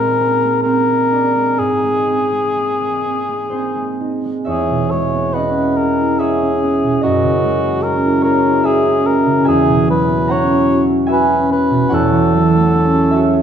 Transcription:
0.00 1.63 A#2 medium
0.00 0.88 G#3 soft
0.00 0.13 A#3 soft
0.00 0.19 C4 soft
0.00 0.62 A#4 medium
0.20 0.64 C4 soft
0.42 0.81 A#3 soft
0.63 2.06 C4 soft
0.63 1.60 A#4 medium
0.89 1.34 G#3 soft
1.12 1.63 D4 soft
1.36 1.82 G#3 soft
1.59 4.51 G#2 soft
1.59 4.00 G#4 medium
1.83 2.31 G#3 soft
2.07 3.04 C4 soft
2.32 2.80 G#3 soft
2.57 2.97 A#3 soft
2.81 3.74 G#3 soft
3.05 3.51 C4 soft
3.28 3.69 A#3 soft
3.50 4.51 C4 soft
3.50 5.78 G#4 soft
3.50 4.50 C5 medium
3.75 4.24 G#3 soft
4.00 4.51 D#4 soft
4.25 4.91 G#3 soft
4.45 7.06 E2 soft
4.45 4.92 G#4 soft
4.45 6.19 C#5 medium
4.45 6.18 E5 medium
4.70 6.82 B2 soft
4.91 7.42 G#3 soft
4.91 5.35 C#5 soft
5.14 6.62 B3 soft
5.34 6.41 C#4 soft
5.34 5.78 B4 soft
5.34 7.00 D#5 soft
5.34 6.78 F#5 medium
5.58 6.00 E4 soft
5.77 6.20 G#4 soft
5.77 6.21 A#4 soft
6.01 8.04 E4 soft
6.19 7.02 G#4 soft
6.19 8.23 G#4 soft
6.19 8.20 C#5 soft
6.19 8.62 E5 medium
6.42 7.82 C#4 soft
6.63 7.07 B3 soft
6.83 7.07 B2 soft
7.01 9.51 F#2 soft
7.01 7.84 F#4 soft
7.01 8.22 A#4 medium
7.01 9.50 D#5 medium
7.23 9.25 C#3 soft
7.43 11.33 G#3 soft
7.64 9.04 A#3 soft
7.83 8.84 C#4 soft
7.83 8.23 A#4 medium
8.05 8.44 E4 soft
8.22 8.64 G#4 soft
8.22 9.50 A#4 soft
8.22 8.67 A#4 medium
8.22 8.63 C#5 medium
8.45 10.48 E4 soft
8.63 12.55 G#4 soft
8.63 9.08 G#4 medium
8.63 11.89 C#5 medium
8.63 9.45 E5 medium
8.86 10.28 C#4 soft
9.06 9.50 A#3 soft
9.06 9.47 A#4 medium
9.26 9.50 C#3 soft
9.45 11.90 E2 medium
9.45 9.88 G#4 medium
9.45 11.06 E5 medium
9.45 11.05 G#5 medium
9.67 11.69 B2 soft
9.87 12.32 F#3 soft
9.87 10.33 B4 medium
10.08 11.49 B3 soft
10.27 11.28 C#4 soft
10.27 10.85 C#5 medium
10.27 11.88 F#5 medium
10.27 11.66 A#5 medium
10.49 10.88 E4 soft
10.70 11.07 F#4 soft
10.89 13.42 E4 soft
11.07 13.12 F#4 soft
11.07 13.10 E5 medium
11.07 13.42 G#5 medium
11.12 11.48 B4 medium
11.29 12.72 C#4 soft
11.50 11.95 B3 soft
11.50 11.95 B4 medium
11.70 11.95 B2 soft
11.89 13.42 E2 medium
11.89 13.11 C#5 medium
11.89 13.42 F#5 medium
11.94 13.42 A4 medium
12.12 13.42 E3 soft
12.33 13.42 F#3 soft
12.53 13.42 A3 soft
12.73 13.42 C#4 soft
12.93 13.32 G#4 soft
13.11 13.42 F#4 soft
13.11 13.42 C#5 medium
13.11 13.42 E5 medium
13.33 13.42 G#4 soft

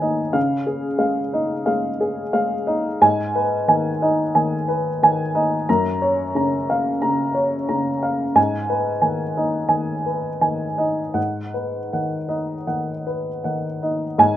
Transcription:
0.00 0.38 D#3 soft
0.00 0.02 D#4 soft
0.00 0.35 D#4 soft
0.00 0.38 B4 soft
0.00 0.02 D#5 soft
0.00 0.35 D#5 soft
0.00 0.38 G#5 medium
0.33 1.63 C#3 medium
0.33 0.87 F5 medium
0.67 1.20 G#4 soft
0.98 1.53 G#3 soft
0.98 1.53 F5 medium
1.33 1.88 D#4 soft
1.33 1.88 D#5 soft
1.66 2.21 G#3 soft
1.66 2.21 F5 medium
2.01 2.55 G#4 soft
2.33 2.88 G#3 soft
2.33 2.88 F5 medium
2.67 3.01 D#4 soft
2.67 3.01 D#5 medium
3.01 4.30 G#2 medium
3.01 3.54 G#5 medium
3.35 3.88 B4 medium
3.68 4.21 D#3 soft
3.68 4.21 G#5 medium
4.02 4.54 D#4 soft
4.02 4.54 D#5 medium
4.35 4.88 D#3 soft
4.35 4.88 G#5 medium
4.68 5.22 B4 medium
5.03 5.55 D#3 medium
5.03 5.56 G#5 medium
5.35 5.68 D#4 soft
5.35 5.68 D#5 medium
5.69 6.98 F#2 medium
5.69 6.22 A#5 medium
6.02 6.55 C#5 medium
6.35 6.88 C#3 soft
6.35 6.89 A#5 medium
6.70 7.22 F5 medium
7.02 7.55 C#3 soft
7.02 7.55 A#5 medium
7.35 7.89 C#5 medium
7.69 8.23 C#3 soft
7.69 8.23 A#5 medium
8.03 8.37 F5 medium
8.35 9.67 G#2 medium
8.35 8.90 G#5 medium
8.70 9.23 B4 medium
9.02 9.57 D#3 soft
9.02 9.57 G#5 medium
9.37 9.93 D#4 soft
9.37 9.93 D#5 soft
9.69 10.27 D#3 soft
9.69 10.27 G#5 medium
10.06 10.64 B4 soft
10.41 11.01 D#3 soft
10.41 11.01 G#5 soft
10.78 11.16 D#4 soft
10.78 11.16 D#5 soft
11.14 12.64 G#2 soft
11.14 11.77 F#5 medium
11.54 12.16 B4 soft
11.93 12.54 D#3 soft
11.93 12.54 F#5 soft
12.29 12.91 D#4 soft
12.29 12.91 D#5 soft
12.67 13.28 D#3 soft
12.67 13.28 F#5 soft
13.07 13.66 B4 soft
13.44 14.04 D#3 soft
13.44 14.04 F#5 soft
13.82 14.18 D#4 soft
13.82 14.19 D#5 soft
14.18 14.37 G#2 medium
14.18 14.37 G#5 medium

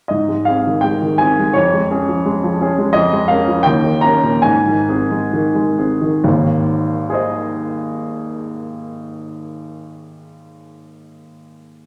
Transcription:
0.08 1.52 G#2 soft
0.08 0.46 D#5 medium
0.28 0.58 G#3 soft
0.45 0.65 C4 soft
0.45 0.65 G#4 soft
0.45 0.83 F5 medium
0.67 0.96 D#3 soft
0.81 1.13 G#3 soft
0.81 1.19 G5 medium
1.02 1.31 D#3 soft
1.18 1.37 C4 soft
1.18 1.37 G#4 soft
1.18 1.55 G#5 medium
1.39 1.57 G#3 soft
1.53 2.92 F2 medium
1.53 2.95 C#5 medium
1.73 2.02 G#3 soft
1.90 2.07 C#4 soft
1.90 2.07 G#4 soft
2.09 2.37 F3 soft
2.26 2.54 G#3 soft
2.44 2.72 F3 soft
2.61 2.77 C#4 soft
2.61 2.77 G#4 soft
2.78 2.96 G#3 soft
2.93 3.65 F2 medium
2.93 3.29 D#5 medium
3.13 3.41 G#3 soft
3.28 3.47 C#4 soft
3.28 3.47 A#4 medium
3.28 3.66 F5 medium
3.48 3.67 F3 soft
3.63 4.44 D#2 medium
3.63 4.04 G5 medium
3.84 4.17 D#3 soft
4.01 4.23 C#4 soft
4.01 4.23 A#4 soft
4.01 4.45 A#5 medium
4.23 4.45 A#2 soft
4.42 6.20 G#2 medium
4.42 5.77 G#5 medium
4.67 5.02 D#3 soft
4.89 5.09 C4 soft
4.89 5.09 G#4 soft
5.11 5.47 G#3 soft
5.33 5.70 D#3 soft
5.55 5.93 G#3 soft
5.78 6.00 C4 soft
5.78 6.00 G#4 soft
6.01 6.24 D#3 soft
6.24 10.89 G#1 medium
6.24 10.88 D#2 medium
7.10 11.20 G#4 soft
7.10 11.21 C5 soft
7.14 11.22 D#5 soft

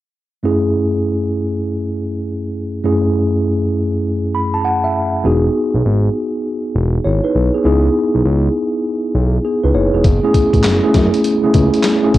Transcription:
0.43 2.80 F#2 medium
0.43 2.80 A3 medium
0.43 2.80 C#4 medium
0.43 2.81 E4 medium
0.43 2.81 G#4 medium
2.83 5.20 F#2 medium
2.83 5.20 A3 medium
2.83 5.20 C#4 medium
2.83 5.21 E4 medium
2.83 5.21 G#4 medium
4.35 4.52 B5 medium
4.54 4.64 A5 medium
4.65 4.82 F#5 medium
4.84 5.22 E5 medium
5.24 5.49 E1 medium
5.24 6.71 B3 medium
5.24 6.71 D#4 medium
5.24 6.72 F#4 medium
5.24 6.72 G#4 medium
5.74 5.83 B1 medium
5.85 6.09 G#1 loud
6.75 6.99 E1 loud
7.05 7.20 G#1 medium
7.05 7.23 E4 soft
7.05 7.23 C#5 medium
7.24 7.53 D#4 medium
7.24 7.52 B4 medium
7.35 7.50 B1 medium
7.54 7.63 B3 medium
7.54 7.65 G#4 medium
7.64 7.89 C#2 loud
7.64 9.40 B3 medium
7.64 9.41 D#4 medium
7.64 9.41 E4 medium
7.64 9.42 G#4 medium
8.14 8.23 B1 medium
8.25 8.49 C#2 loud
9.15 9.39 B1 medium
9.45 9.63 B3 soft
9.45 9.63 G#4 medium
9.64 9.72 C#2 medium
9.64 9.74 D#4 medium
9.64 9.74 B4 medium
9.75 9.90 F#1 medium
9.75 9.93 E4 medium
9.75 9.93 C#5 medium
9.94 10.02 E1 medium
9.94 10.22 B3 soft
9.94 10.22 G#4 medium
10.04 10.20 F#1 loud
10.04 kick loud
10.04 closed hi-hat medium
10.23 10.71 A3 medium
10.23 10.72 C#4 medium
10.23 10.72 E4 medium
10.23 10.72 G#4 medium
10.34 kick medium
10.34 closed hi-hat medium
10.53 10.62 A1 medium
10.53 kick medium
10.53 closed hi-hat soft
10.63 10.80 F#1 medium
10.63 snare loud
10.63 clap medium
10.63 closed hi-hat medium
10.83 11.32 A3 medium
10.83 11.32 C#4 medium
10.83 11.32 E4 medium
10.83 11.32 G#4 medium
10.94 11.10 F#2 loud
10.94 kick medium
10.94 snare medium
10.94 closed hi-hat medium
11.14 closed hi-hat medium
11.24 closed hi-hat medium
11.43 11.48 C#2 soft
11.43 11.92 A3 medium
11.43 11.92 C#4 medium
11.43 11.92 E4 medium
11.43 11.92 G#4 medium
11.54 11.70 C#2 medium
11.54 kick medium
11.54 closed hi-hat medium
11.74 closed hi-hat soft
11.83 snare loud
11.83 clap medium
11.83 closed hi-hat medium
12.03 12.18 A3 medium
12.03 12.18 C#4 medium
12.03 12.18 E4 medium
12.03 12.18 G#4 medium
12.14 12.18 A1 medium
12.14 kick medium
12.14 closed hi-hat medium

